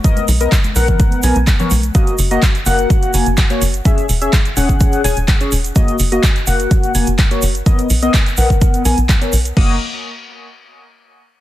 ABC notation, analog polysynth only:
X:1
M:4/4
L:1/16
Q:1/4=126
K:F#mix
V:1 name="Analog polysynth"
[B,Ad]2 z [B,Ad] z2 [B,Af]4 [B,Ag] z2 [B,Ac] z2 | [A,Fd]2 z [A,Fd] z2 [A,Ff]4 [A,Fg] z2 [A,Fc] z2 | [CGe]2 z [CGe] z2 [CGf]4 [CGg] z2 [CGc] z2 | [A,Fd]2 z [A,Fd] z2 [A,Ff]4 [A,Fg] z2 [A,Fc] z2 |
[B,Ad]2 z [B,Ad] z2 [B,Af]4 [B,Ag] z2 [B,Ac] z2 | [A,Fd]2 z12 z2 |]